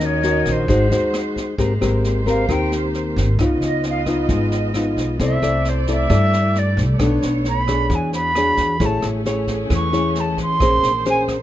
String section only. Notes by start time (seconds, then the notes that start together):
Already playing: C#4 F#4 D#5
0.69 G#3 C5
1.59 A#3 G4 C5
3.38 B3 F4 D#5
5.19 A3 E4 D5
6.99 D4 C#5
7.89 F#4 G#4
8.79 A3 C#4 G#4
10.60 G#4 C5